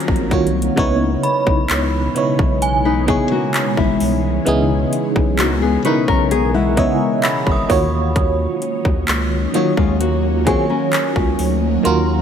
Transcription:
Already playing: D#3 F#3 A#3 C4 C#4 D#4 F4 F#4 A#4 C#5 A#5 C#6 F6 F#6
0.00 closed hi-hat
0.08 A#1, kick
0.16 closed hi-hat
0.30 C2 D#3 A#3 F4 F#4 C#5, kick, closed hi-hat
0.47 closed hi-hat
0.62 closed hi-hat
0.76 C#2 B2 C#3 E3 G#3 B3 C#4 D#4 E4 C#5, kick, closed hi-hat
1.23 B5, closed hi-hat
1.47 B1, kick
1.70 C#2, clap, closed hi-hat
2.15 C#3 B3 D#4 E4 C#5, closed hi-hat
2.39 B1, kick
2.62 G#5, closed hi-hat
2.85 D#4 B4
3.07 C#3 B3 D#4 E4 G#4 C#5, kick, closed hi-hat
3.31 A#3 F#4
3.54 clap, closed hi-hat
3.77 G#1 G#3 E4, kick
4.00 C2, open hi-hat
4.45 C#2 C#3 B3 D#4 E4 G#4, closed hi-hat
4.93 closed hi-hat
5.16 B1, kick
5.39 C#2 A#3 F#4, clap, closed hi-hat
5.62 B3 G#4
5.84 C#3 B3 D#4 E4 A#4 B4 C#6, closed hi-hat
6.08 B1 C#4 A#4 A#5, kick
6.31 B3 G#4 G#5, closed hi-hat
6.54 G#3 E4 F#5
6.76 C#3 B3 E4 C#5 D#5 E5, kick, closed hi-hat
7.23 E5 B5, clap, closed hi-hat
7.47 G#1, kick
7.52 D#6
7.68 D#2 D#3 F#3 A#3 C#4 D#4 F4 F#4 C#5, kick, open hi-hat
8.16 kick, closed hi-hat
8.62 closed hi-hat
8.85 D#2, kick
9.08 C#2, clap, closed hi-hat
9.53 D#3 F#3 A#3 D#4 F4 F#4 C#5, closed hi-hat
9.77 D#2 G#3 F4, kick
10.00 A#3 F#4, closed hi-hat
10.45 D#3 A#3 C4 F4 F#4 G#4 C#5 G#5, kick, closed hi-hat
10.70 C#4 A#4
10.93 clap, closed hi-hat
11.16 C#2, kick
11.39 D2, open hi-hat
11.83 D#2 D#3 A#3 F4 F#4 A#4 C6, closed hi-hat

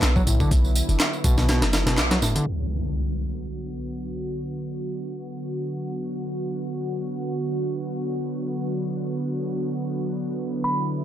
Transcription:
Already playing: D3 F#3 B3 E4
0.02 B1, snare, clap, closed hi-hat, tambourine
0.16 F#3, kick, tambourine
0.27 B1 A2, closed hi-hat, tambourine
0.40 D3, kick, tambourine
0.51 B1, kick, closed hi-hat, tambourine
0.65 tambourine
0.75 closed hi-hat, tambourine
0.89 F#1, closed hi-hat, tambourine
1.00 snare, clap, closed hi-hat, tambourine
1.13 tambourine
1.24 B1 B2, kick, closed hi-hat, tambourine
1.38 B2, snare, tambourine
1.48 B2, snare, closed hi-hat, tambourine
1.62 F#1, snare, closed hi-hat, tambourine
1.73 snare, closed hi-hat, tambourine
1.86 B2, snare, closed hi-hat, tambourine
1.97 B1, snare, clap, closed hi-hat, tambourine
2.10 F#3, snare, closed hi-hat, tambourine
2.22 F#1 A2, snare, tambourine
2.35 D3, closed hi-hat, tambourine
2.46 D3 F#3 B3 F#4, impact
10.27 E4
10.64 B5

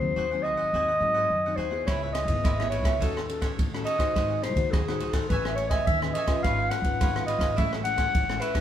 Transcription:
Already playing: G#2 C5
0.00 D#2 F#3 C4 D#4
0.16 D#2 D#3 F#4 G#4 C5 F#5
0.31 F#3 C4 D#4 G#4 C5 F#5
0.42 F#4 G#4 C5 D#5 F#5
0.56 G#1 G#4 C5 F#5
0.73 D#2 G#2 F#3 C4 D#4 F#4 G#4 C5 F#5
0.88 G#4 C5 F#5
1.00 G#2 F#3 C4 D#4, muted cavaquinho stroke
1.14 G#4 C5 F#5
1.30 F#2 D#3
1.46 F#3 C4 D#4 G#4 C5 F#5
1.56 D#2 F#4 G#4 C5 F#5
1.71 B3 E4 G#4 C5 F#5
1.86 C#2 C#3 E4 B4 C#5 E5, kick, cross-stick, ride
2.02 B4 C#5 E5
2.13 D#5, muted cavaquinho stroke, cross-stick, ride
2.25 G#1 B3, kick, ride
2.30 E4 G#4
2.43 G#1 G#2 E4 B4 C#5 E5, kick, cross-stick, ride
2.59 B3 E4 G#4 B4 C#5 E5, cross-stick
2.70 E4 B4 C#5 E5, ride
2.82 C#2 B4 C#5 E5, kick, cross-stick, ride
3.00 D#2 D#3 C#4 D#4 F#4 A4 C#5 F#5, kick, ride
3.16 A4 C#5 F#5, cross-stick
3.29 C#4 F#4 A4, muted cavaquinho stroke, ride
3.41 A4 C#5 F#5, kick, cross-stick, ride
3.59 A1 D#3, kick, ride
3.73 C#4 F#4 A4 C#5 F#5, cross-stick
3.84 D#4 A4 C#5 D#5 F#5, ride
3.98 D#4 F#4 A4 C5 C#5 F#5, kick, cross-stick, ride
4.16 G#1 G#3 F#4 G#4 C5 F#5, kick, cross-stick, ride
4.30 G#4 C5 F#5
4.43 C5, muted cavaquinho stroke, cross-stick, ride
4.54 D#2 D#4 F#4, kick, ride
4.58 C5
4.71 D#2 D#3 F#4 G#4 C5 F#5, kick, cross-stick, ride
4.88 D#4 F#4 G#4 C5 F#5, cross-stick
5.00 F#4 G#4 C5 F#5, ride
5.11 G#1 A4 F#5, kick, cross-stick, ride
5.15 G#4 C5
5.29 A1 A3 C#4 G#4 A4 B4 C#5 E5, kick, ride
5.33 G#5
5.45 C#5 E5 G#5, cross-stick
5.55 C#4 G#4 B4 C#5, muted cavaquinho stroke, ride
5.69 C#5 D#5 E5 G#5, kick, cross-stick, ride
5.87 D#2 E3 E5, kick, ride
6.02 C#4 G#4 B4 C#5 E5 G#5, cross-stick
6.13 A4 C#5 D#5 E5, ride
6.17 G#5
6.28 C#4 F4 B4 C#5 E5 G#5, kick, cross-stick, ride
6.43 G#1 G#3 F4 B4 C#5 F5, kick, cross-stick, ride
6.47 F5
6.59 B4 C#5 F5
6.70 F#5, muted cavaquinho stroke, cross-stick, ride
6.82 G#1 C#4 F4 B4, kick, ride
7.01 G#1 G#3 F4 B4 C#5 F5, kick, cross-stick, ride
7.15 C#4 F4 B4 C#5 F5, cross-stick
7.26 F4 B4 C#5 D#5 F5, ride
7.39 G#1 B4 C#5 F5, kick, cross-stick, ride
7.56 A1 A2 G#3 C#4 E4 A4 C#5 E5 F#5, kick, ride
7.72 A4 C#5 F#5, cross-stick
7.84 G#3 C#4 E4 F#5, muted cavaquinho stroke, ride
7.96 A4 C#5 F#5, kick, cross-stick, ride
8.15 A1 A2, kick, ride
8.29 G#3 C#4 E4 A4 C#5 F#5, cross-stick
8.40 E4 A4 B4 C#5 F#5, ride
8.54 F#3 C#4 D#4 A4 C#5 F#5, kick, cross-stick, ride

